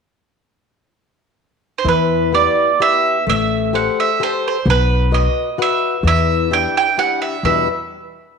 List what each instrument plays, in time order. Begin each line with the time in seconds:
1.78 mandolin C5
1.84 upright bass E2, nylon-string guitar E3
1.88 mandolin B4
2.32 nylon-string guitar B3 E4 G4, mandolin D5
2.80 nylon-string guitar B3 E4 G4, mandolin E5
3.27 upright bass A1, nylon-string guitar A3, mandolin E5
3.73 nylon-string guitar G4 A4 C5, mandolin F#5
4.00 mandolin E5
4.20 nylon-string guitar G4 A4 C5, mandolin C5
4.48 mandolin C5
4.66 upright bass B1, nylon-string guitar B3
4.70 mandolin B4
5.11 nylon-string guitar F#4 B4 D#5, mandolin D#5
5.58 nylon-string guitar F#4 B4 F#5, mandolin E5
6.03 upright bass E2, nylon-string guitar E3
6.07 mandolin E5
6.51 nylon-string guitar D4 E4 G4, mandolin G5
6.77 mandolin G5
6.97 nylon-string guitar D4 E4 G4, mandolin F#5
7.22 mandolin E5
7.43 upright bass E2, nylon-string guitar E2 B2 G3 D4 E4 B4, mandolin E5